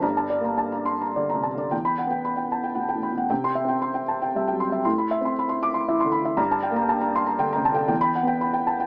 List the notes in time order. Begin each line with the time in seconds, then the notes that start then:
0.00 G1 G2 A#5
0.17 A5
0.30 D5
0.41 A#3 A#5
0.58 A5
0.72 A#5
0.86 C6
1.02 A#5
1.16 D3 D5
1.30 A#5
1.34 C3
1.43 A5
1.54 D3 D5
1.71 E2 G5
1.85 B5
1.98 F#5
2.07 B3 G5
2.25 B5
2.37 G5
2.52 A5
2.64 G5
2.75 B2 F#5
2.89 G5
2.94 A2
3.03 B5
3.12 B2
3.18 F#5
3.30 C3 G5
3.44 C6
3.55 E5
3.64 C4
3.69 G5
3.82 C6
3.94 G5
4.08 A5
4.22 G5
4.35 G3 E5
4.48 F#3 G5
4.60 C6
4.70 G3 E5
4.85 A2 C6
4.98 B5
5.11 E5
5.21 C4
5.25 C6
5.39 B5
5.49 C6
5.63 D6
5.74 C6
5.88 E3 E5
6.00 C6
6.04 D3
6.12 B5
6.22 E3 E5
6.37 G2 A#5
6.51 A5
6.63 G5
6.71 A#3
6.76 A#5
6.89 A5
7.01 A#5
7.15 C6
7.26 A#5
7.39 D3 G5
7.53 C3 A#5
7.65 A5
7.72 D3 G5
7.88 E2 G5
8.01 B5
8.15 F#5
8.23 B3 G5
8.41 B5
8.54 G5
8.67 A5
8.80 G5